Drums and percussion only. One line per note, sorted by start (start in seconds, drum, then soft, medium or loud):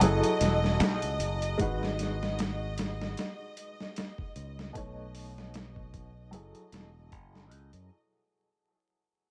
0.01 closed hi-hat medium
0.23 closed hi-hat soft
0.41 snare soft
0.41 closed hi-hat medium
0.64 snare soft
0.80 snare loud
0.80 closed hi-hat medium
1.02 closed hi-hat soft
1.20 closed hi-hat medium
1.42 closed hi-hat soft
1.59 kick loud
1.59 closed hi-hat medium
1.83 snare soft
1.99 snare soft
1.99 closed hi-hat medium
2.23 snare soft
2.39 snare loud
2.39 closed hi-hat medium
2.78 snare medium
2.78 closed hi-hat medium
3.01 snare soft
3.17 snare medium
3.17 closed hi-hat medium
3.57 closed hi-hat medium
3.80 snare soft
3.96 snare loud
3.96 closed hi-hat medium
4.18 kick medium
4.36 closed hi-hat medium
4.59 snare soft
4.75 kick loud
4.75 closed hi-hat medium
5.15 open hi-hat medium
5.38 snare soft
5.54 snare loud
5.54 closed hi-hat medium
5.76 kick medium
5.94 kick medium
5.94 closed hi-hat medium
6.33 closed hi-hat medium
6.55 closed hi-hat soft
6.72 snare medium
6.72 closed hi-hat medium
7.12 kick medium
7.12 closed hi-hat medium
7.35 snare soft
7.51 closed hi-hat medium
7.73 closed hi-hat soft